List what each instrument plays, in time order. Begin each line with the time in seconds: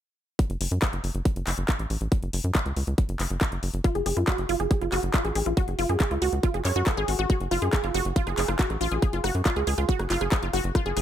0.39 kick, closed hi-hat
0.50 analog synth bass F#1, closed hi-hat
0.61 analog synth bass F#1, open hi-hat
0.71 analog synth bass F#2, closed hi-hat
0.82 kick, clap, closed hi-hat
0.93 analog synth bass F#1, closed hi-hat
1.04 analog synth bass F#1, open hi-hat
1.15 analog synth bass F#1, closed hi-hat
1.25 kick, closed hi-hat
1.36 analog synth bass F#1, closed hi-hat
1.47 analog synth bass F#1, clap, open hi-hat
1.58 analog synth bass F#1, closed hi-hat
1.69 kick, clap, closed hi-hat
1.79 analog synth bass A1, closed hi-hat
1.90 analog synth bass A1, open hi-hat
2.01 analog synth bass A1, closed hi-hat
2.12 kick, closed hi-hat
2.23 analog synth bass F#1, closed hi-hat
2.33 analog synth bass F#1, open hi-hat
2.44 analog synth bass F#2, closed hi-hat
2.55 kick, clap, closed hi-hat
2.66 analog synth bass C#2, closed hi-hat
2.76 analog synth bass C#2, open hi-hat
2.87 analog synth bass C#2, closed hi-hat
2.98 kick, closed hi-hat
3.09 analog synth bass F#1, closed hi-hat
3.20 analog synth bass F#1, clap, open hi-hat
3.30 analog synth bass F#1, closed hi-hat
3.41 kick, clap, closed hi-hat
3.52 analog synth bass F#1, closed hi-hat
3.63 analog synth bass F#1, open hi-hat
3.74 analog synth bass F#1, closed hi-hat
3.84 synth arpeggio sound F4, kick, closed hi-hat
3.95 analog synth bass F#1, synth arpeggio sound G#4, closed hi-hat
4.06 analog synth bass F#1, synth arpeggio sound G#4, open hi-hat
4.17 analog synth bass F#2, synth arpeggio sound F4, closed hi-hat
4.28 synth arpeggio sound F#4, kick, clap, closed hi-hat
4.38 analog synth bass F#1, closed hi-hat
4.49 analog synth bass F#1, synth arpeggio sound F4, open hi-hat
4.60 analog synth bass F#1, synth arpeggio sound G#4, closed hi-hat
4.71 synth arpeggio sound G#4, kick, closed hi-hat
4.81 analog synth bass F#1, synth arpeggio sound F4, closed hi-hat
4.92 analog synth bass F#1, synth arpeggio sound F#4, clap, open hi-hat
5.03 analog synth bass F#1, closed hi-hat
5.14 synth arpeggio sound F4, kick, clap, closed hi-hat
5.25 analog synth bass A1, synth arpeggio sound G#4, closed hi-hat
5.35 analog synth bass A1, synth arpeggio sound G#4, open hi-hat
5.46 analog synth bass A1, synth arpeggio sound F4, closed hi-hat
5.57 synth arpeggio sound F#4, kick, closed hi-hat
5.68 analog synth bass F#1, closed hi-hat
5.79 analog synth bass F#1, synth arpeggio sound F4, open hi-hat
5.89 analog synth bass F#2, synth arpeggio sound G#4, closed hi-hat
6.00 synth arpeggio sound G#4, kick, clap, closed hi-hat
6.11 analog synth bass C#2, synth arpeggio sound F4, closed hi-hat
6.22 analog synth bass C#2, synth arpeggio sound F#4, open hi-hat
6.33 analog synth bass C#2, closed hi-hat
6.43 synth arpeggio sound F4, kick, closed hi-hat
6.54 analog synth bass F#1, synth arpeggio sound G#4, closed hi-hat
6.65 analog synth bass F#2, synth arpeggio sound C#5, clap, open hi-hat
6.76 analog synth bass F#2, synth arpeggio sound F#4, closed hi-hat
6.87 synth arpeggio sound A4, kick, clap, closed hi-hat
6.97 analog synth bass G#1, synth arpeggio sound G#4, closed hi-hat
7.08 analog synth bass G#1, synth arpeggio sound F#4, open hi-hat
7.19 analog synth bass G#1, synth arpeggio sound F#4, closed hi-hat
7.30 synth arpeggio sound F#4, kick, closed hi-hat
7.40 analog synth bass F#1, closed hi-hat
7.51 analog synth bass F#1, synth arpeggio sound F4, cross-stick, open hi-hat
7.62 analog synth bass F#2, synth arpeggio sound G#4, closed hi-hat
7.73 synth arpeggio sound G#4, kick, cross-stick, clap, closed hi-hat
7.84 analog synth bass F#1, synth arpeggio sound F4, closed hi-hat
7.94 analog synth bass F#1, synth arpeggio sound F#4, cross-stick, open hi-hat
8.05 analog synth bass F#1, closed hi-hat
8.16 synth arpeggio sound F4, kick, closed hi-hat
8.27 analog synth bass F#1, synth arpeggio sound G#4, cross-stick, closed hi-hat
8.38 analog synth bass F#1, synth arpeggio sound G#4, clap, open hi-hat
8.48 analog synth bass F#1, synth arpeggio sound F4, cross-stick, closed hi-hat
8.59 synth arpeggio sound F#4, kick, clap, closed hi-hat
8.70 analog synth bass A1, cross-stick, closed hi-hat
8.81 analog synth bass A1, synth arpeggio sound F4, open hi-hat
8.92 analog synth bass A1, synth arpeggio sound G#4, closed hi-hat
9.02 synth arpeggio sound G#4, kick, cross-stick, closed hi-hat
9.13 analog synth bass F#1, synth arpeggio sound F4, closed hi-hat
9.24 analog synth bass F#1, synth arpeggio sound F#4, cross-stick, open hi-hat
9.35 analog synth bass F#2, closed hi-hat
9.46 synth arpeggio sound F4, kick, cross-stick, clap, closed hi-hat
9.56 analog synth bass C#2, synth arpeggio sound G#4, closed hi-hat
9.67 analog synth bass C#2, synth arpeggio sound G#4, open hi-hat
9.78 analog synth bass C#2, synth arpeggio sound F4, cross-stick, closed hi-hat
9.89 synth arpeggio sound F#4, kick, closed hi-hat
9.99 analog synth bass F#1, cross-stick, closed hi-hat
10.10 analog synth bass F#1, synth arpeggio sound F4, clap, open hi-hat
10.21 analog synth bass F#1, synth arpeggio sound G#4, cross-stick, closed hi-hat
10.32 synth arpeggio sound G#4, kick, clap, closed hi-hat
10.43 analog synth bass F#1, synth arpeggio sound F4, closed hi-hat
10.53 analog synth bass F#1, synth arpeggio sound F#4, cross-stick, open hi-hat
10.64 analog synth bass F#1, closed hi-hat
10.75 synth arpeggio sound F4, kick, cross-stick, closed hi-hat
10.86 analog synth bass F#1, synth arpeggio sound G#4, closed hi-hat
10.97 analog synth bass F#1, synth arpeggio sound G#4, cross-stick, open hi-hat